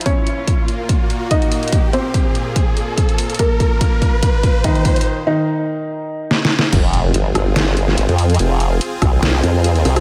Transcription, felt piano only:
X:1
M:4/4
L:1/8
Q:"Swing 16ths" 1/4=144
K:Fm
V:1 name="Felt piano"
[Dd]3 z3 [Ee]2- | [Ee] [Cc]6- [Cc] | [B,B]3 z3 [E,E]2- | [E,E] [E,E]6- [E,E] |
z8 | z8 |]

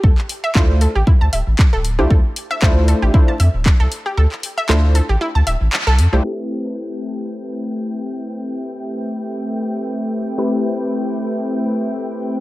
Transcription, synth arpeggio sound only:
X:1
M:4/4
L:1/16
Q:"Swing 16ths" 1/4=116
K:Am
V:1 name="Synth arpeggio sound"
A z2 e A z A G E a e z2 A z G | A z2 e A z A G E a e z2 A z G | A z2 e A z A G E a e z2 A z G | z16 |
z16 | z16 |]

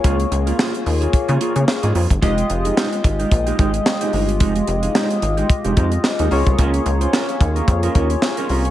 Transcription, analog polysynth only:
X:1
M:4/4
L:1/8
Q:"Swing 16ths" 1/4=110
K:Fm
V:1 name="Analog polysynth"
[B,FAd]6- [B,FAd] z | [A,FGe]8- | [A,FGe]6- [A,FGe] [B,FAd]- | [B,FAd]8 |]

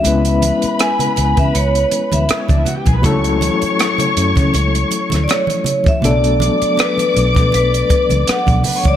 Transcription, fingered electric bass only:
X:1
M:4/4
L:1/16
Q:"Swing 16ths" 1/4=80
K:Bm
V:1 name="Fingered electric bass" clef=bass
C,,3 z3 C,, C, C,,2 z D,, z C,, z B,,, | C,,3 z3 F,, C, C,,2 z D,, z4 | B,,,3 z3 B,,, B,, B,,,2 z C,, z B,,, z C,, |]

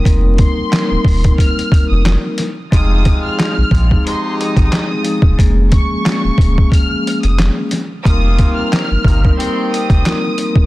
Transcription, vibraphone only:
X:1
M:4/4
L:1/16
Q:"Swing 16ths" 1/4=90
K:Cphr
V:1 name="Vibraphone"
[G,B,CEB]4 [G,B,CEB]8- [G,B,CEB]2 z2 | [F,A,CEA]6 z [F,A,CEA]4- [F,A,CEA] [F,A,CEA]2 [F,A,CEA]2 | [F,A,B,DA]4 [F,A,B,DA]8- [F,A,B,DA]2 z2 | [G,B,CEB]6 z [G,B,CEB]4- [G,B,CEB] [G,B,CEB]2 [G,B,CEB]2 |]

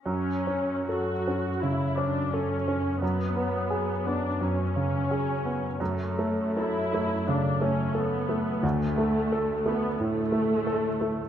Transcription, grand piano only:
X:1
M:4/4
L:1/8
Q:1/4=87
K:F#m
V:1 name="Grand piano"
F,, C A C C, C A C | F,, B, G B, F,, C, G B, | F,, A, A A, C, A, A A, | D,, A, A A, A,, A, A A, |]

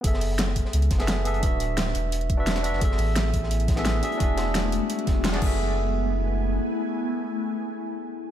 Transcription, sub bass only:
X:1
M:4/4
L:1/16
Q:1/4=173
K:F#m
V:1 name="Sub bass" clef=bass
F,,,6- F,,, z C,,2 F,,,6 | D,,,6 E,,,8- E,,, F,,,- | F,,,2 A,,,12 z2 | E,,,6- E,,, z3 E,,,4 F,,,2- |
F,,,12 z4 | z16 |]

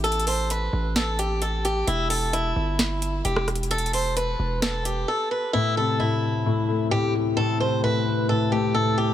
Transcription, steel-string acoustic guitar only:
X:1
M:4/4
L:1/8
Q:1/4=131
K:Am
V:1 name="Steel-string acoustic guitar"
A c B2 A G A G | E A E4 G z | A c B2 A G A B | E A E4 G z |
A c B2 A G A G |]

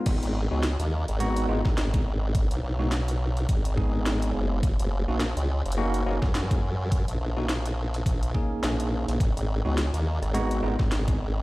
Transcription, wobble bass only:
X:1
M:4/4
L:1/16
Q:"Swing 16ths" 1/4=105
K:G#dor
V:1 name="Wobble bass" clef=bass
G,,, G,,,2 C,,2 D,,2 G,,,3 G,,, G,,,4- G,,,- | G,,, B,,, B,,,6 G,,,6 F,,,2 | F,,, F,,,2 A,,,2 C,,2 F,,,3 F,,, F,,4- F,,- | F,, A,,, A,,,6 A,,,2 z2 A,,,3 A,,, |
G,,, G,,,2 C,,2 D,,2 G,,,3 G,,, G,,,4- G,,, |]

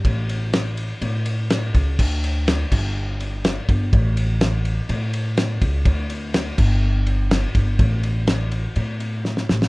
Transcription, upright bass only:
X:1
M:4/4
L:1/8
Q:1/4=124
K:Amix
V:1 name="Upright bass" clef=bass
A,,,4 A,,3 C,, | D,,3 G,,,4 G,,, | A,,,4 A,,3 C,, | D,,3 G,,,4 G,,, |
A,,,4 A,,3 A,,, |]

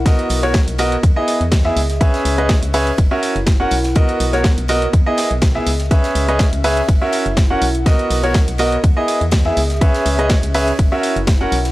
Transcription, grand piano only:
X:1
M:4/4
L:1/16
Q:"Swing 16ths" 1/4=123
K:B
V:1 name="Grand piano"
[B,FAd]3 [B,FAc] z2 [B,FAd] z2 [B,EGd]2 z2 [B,EGe] z2 | [CGBe]3 [CGBd] z2 [CGBe] z2 [CFAe]2 z2 [CFAf] z2 | [B,FAd]3 [B,FAc] z2 [B,FAd] z2 [B,EGd]2 z2 [B,EGe] z2 | [CGBe]3 [CGBd] z2 [CGBe] z2 [CFAe]2 z2 [CFAf] z2 |
[B,FAd]3 [B,FAc] z2 [B,FAd] z2 [B,EGd]2 z2 [B,EGe] z2 | [CGBe]3 [CGBd] z2 [CGBe] z2 [CFAe]2 z2 [CFAf] z2 |]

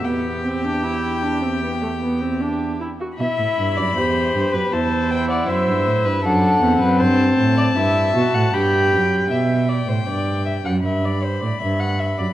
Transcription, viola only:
X:1
M:4/4
L:1/16
Q:1/4=78
K:Em
V:1 name="Viola"
B,2 C D E2 D C B, A, B, C D2 E F | E4 G4 E8 | D2 C6 E2 F2 G4 | z16 |]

